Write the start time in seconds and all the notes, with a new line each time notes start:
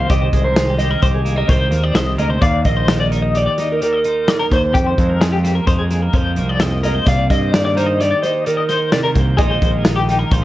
Already playing: D#3 D#4 G4 C5
0.09 C2 C3 G4 D#5, kick, closed hi-hat
0.21 C5
0.33 C2 G#3, kick, closed hi-hat
0.44 A#4 C5
0.56 D#3 G#4, snare, closed hi-hat
0.67 G4
0.78 C4 D#5, snare, closed hi-hat
0.91 A#4
1.02 C2 G4 C5, kick, closed hi-hat
1.14 G#4
1.25 A#3, closed hi-hat
1.36 C4 A#4 D#5
1.47 C2 D#3 C5, kick, closed hi-hat
1.71 D#2 A#3 A#4, snare, closed hi-hat
1.83 C4 D5
1.94 C2 C3 D#5, snare, closed hi-hat
2.18 D2 G#3 A#4 D#5, closed hi-hat
2.30 C5
2.41 D#2 D5 F5, kick, closed hi-hat
2.65 A#1 A#3 D#5, kick, closed hi-hat
2.77 C5
2.88 D#3, snare, closed hi-hat
3.00 D5
3.11 D#4 A#4, closed hi-hat
3.23 D#5
3.35 G4 D5, closed hi-hat
3.46 D5
3.58 D#4 D#5, snare, closed hi-hat
3.72 A#4
3.81 D#3 A#4 D5, closed hi-hat
3.93 D#5
4.04 D#4 C5, closed hi-hat
4.28 D5, snare, closed hi-hat
4.39 A#4
4.51 D#2 C5, kick, snare, closed hi-hat
4.74 F2 G4, kick, closed hi-hat
4.86 C5
4.98 F2 G#3, kick, closed hi-hat
5.09 A#4
5.21 F3 G#4, snare, closed hi-hat
5.32 G4
5.44 A#3, snare, closed hi-hat
5.55 A#4
5.67 F2 D#4 C5, kick, closed hi-hat
5.79 G#4
5.91 A#3, snare, closed hi-hat
6.02 A#4
6.13 F2 F3 C5, kick, closed hi-hat
6.36 C2 A#3 A#4, closed hi-hat
6.49 D5
6.60 F2 D#5, snare, closed hi-hat
6.84 G#3 A#4 D#5, snare, closed hi-hat
6.95 C5
7.06 C2 C3 D5 F5, kick, closed hi-hat
7.30 G2 A#3 D#5, kick, snare, closed hi-hat
7.41 C5
7.53 D#3 D5, snare, closed hi-hat
7.65 D5
7.75 D#4 A#4 C5, snare, closed hi-hat
7.86 D#5
8.00 G4 D5, snare, closed hi-hat
8.11 D5
8.22 D#4 C5 D#5, snare, closed hi-hat
8.45 D#3 A#4 D5, closed hi-hat
8.57 D#5
8.69 D#4 C5, snare, closed hi-hat
8.92 C3 D5, snare, closed hi-hat
9.03 A#4
9.14 C2 A#3 C5, kick, closed hi-hat
9.37 A#1 A#2 D#3 G#3 D#4 F4 G#4 D#5, kick, closed hi-hat
9.49 C5
9.62 A#1 G#3, kick, closed hi-hat
9.71 A#4
9.83 D#3 G#4, snare, closed hi-hat
9.96 G4
10.09 D#4, snare, closed hi-hat
10.19 A#4
10.31 A#1 F4 C5, kick, closed hi-hat